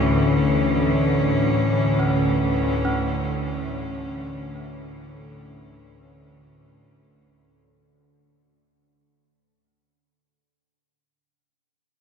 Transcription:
Already playing: D2 A2 D3 E3 A3 C#4 A4
1.99 C#4
2.85 C#4

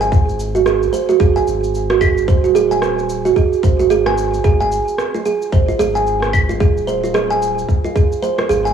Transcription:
Already playing: G#1
0.01 G#5, shaker
0.12 kick, shaker
0.29 shaker
0.40 shaker
0.55 F#4, shaker
0.66 G#4, cross-stick, shaker
0.83 shaker
0.93 C5, shaker
1.09 F#4, shaker
1.20 G#1 G#4, kick, shaker
1.36 G#5, shaker
1.47 G#1, shaker
1.64 shaker
1.75 shaker
1.90 F#4, cross-stick, shaker
2.01 G#4, kick, claves, shaker
2.18 shaker
2.28 D#1 C5, kick, shaker
2.44 F#4, shaker
2.55 G#4, shaker
2.71 G#5, shaker
2.82 cross-stick, shaker
2.99 shaker
3.10 shaker
3.25 F#4, shaker
3.36 G#4, kick, shaker
3.53 shaker
3.63 G#1 C5, kick, shaker
3.79 G#1 F#4, shaker
3.90 G#4, shaker
4.06 G#5, cross-stick, shaker
4.18 shaker
4.34 shaker
4.44 G#1 G#4, kick, shaker
4.60 G#5, shaker
4.72 shaker
4.88 shaker
4.98 cross-stick, shaker
5.14 F4, shaker
5.25 G#4, shaker
5.42 shaker
5.52 G#1 C5, kick, shaker
5.68 F4, shaker
5.79 G#1 G#4, shaker
5.95 G#5, shaker
6.07 shaker
6.22 cross-stick, shaker
6.33 kick, claves, shaker
6.49 F4, shaker
6.60 D#1 G#4, kick, shaker
6.77 shaker
6.87 C5, shaker
7.04 F4, shaker
7.14 G#4, cross-stick, shaker
7.31 G#5, shaker
7.42 shaker
7.58 shaker
7.69 kick, shaker
7.84 F4, shaker
7.96 G#4, kick, shaker
8.12 shaker
8.23 C5, shaker
8.38 F4, cross-stick, shaker
8.49 G#1 G#4, shaker
8.65 G#5, shaker

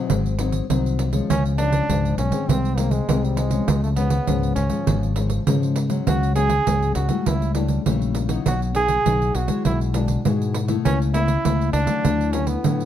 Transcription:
Already playing: F#3 G#3 C4 D#4
0.10 G#1 G#2, pandeiro
0.26 pandeiro
0.39 F#3 C4 D#4, pandeiro
0.52 pandeiro
0.70 C2 D#3 F#3 C4 D#4, pandeiro
0.86 pandeiro
0.99 pandeiro
1.12 F3 G#3 C#4, pandeiro
1.29 C#2 C#3 C#4, pandeiro
1.45 pandeiro
1.58 F3 G#3 C#4 D4, pandeiro
1.72 pandeiro
1.89 C#2 G#2 F3 G#3, pandeiro
2.05 pandeiro
2.18 B1 C#4, pandeiro
2.31 D#3 G#3 C4, pandeiro
2.49 C2 C3 C4, pandeiro
2.65 pandeiro
2.77 D#3 G#3 A#3 C4, pandeiro
2.91 G#3, pandeiro
3.09 C2 C3 D#3 G#3 C4, pandeiro
3.24 G3, pandeiro
3.36 G#3, pandeiro
3.50 F3 G#3 C#4, pandeiro
3.68 C#2 C#3, pandeiro
3.83 A3, pandeiro
3.96 F3 G#3 B3 C#4, pandeiro
4.10 pandeiro
4.27 C#2 G#2 F3 G#3 C#4, pandeiro
4.43 pandeiro
4.55 C#2 C#4, pandeiro
4.70 F3 G#3 C#4, pandeiro
4.87 G#1 C#3, pandeiro
5.03 pandeiro
5.16 F3 G#3 C#4, pandeiro
5.30 pandeiro
5.47 G#2 C#3 F3 G#3 C#4, pandeiro
5.63 pandeiro
5.76 pandeiro
5.89 F#3 G#3 C#4, pandeiro
6.07 C#2 C#3 F#4, pandeiro
6.23 pandeiro
6.35 F#3 G#3 C#4 G#4, pandeiro
6.50 pandeiro
6.66 C#2 G#2 F#3 G#3 C#4, pandeiro
6.83 pandeiro
6.95 C#2 F#4, pandeiro
7.09 G3 A3 E4, pandeiro
7.26 C#2 C#3 E4, pandeiro
7.42 pandeiro
7.55 G3 A3 D4 E4, pandeiro
7.68 pandeiro
7.86 A#1 C#3 G3 A3 E4, pandeiro
8.02 pandeiro
8.15 pandeiro
8.29 F#3 B3 D#4, pandeiro
8.46 B1 B2 F#4, pandeiro
8.62 pandeiro
8.75 F#3 B3 D#4 G#4, pandeiro
8.88 pandeiro
9.06 B1 F#3 B3 D#4, pandeiro
9.22 pandeiro
9.35 B1 F#4, pandeiro
9.48 G#3 E4 F#4, pandeiro
9.65 B1 B2 E4, pandeiro
9.81 pandeiro
9.94 G#3 D4 E4 F#4, pandeiro
10.08 pandeiro
10.25 G#2 B2 G#3 E4 F#4, pandeiro
10.42 pandeiro
10.54 pandeiro
10.68 A3 B3 E4, pandeiro
10.85 C#2 C#3 C#4, pandeiro
11.02 pandeiro
11.14 A3 B3 E4, pandeiro
11.28 pandeiro
11.45 C#2 C#3 A3 B3 E4, pandeiro
11.61 pandeiro
11.73 C#2 D4, pandeiro
11.87 F#3 A3 E4, pandeiro
12.05 D2 D3, pandeiro
12.21 pandeiro
12.33 F#3 A3 C#4 E4, pandeiro
12.47 B3, pandeiro
12.64 A2 D3 F#3 A3 E4, pandeiro
12.80 pandeiro

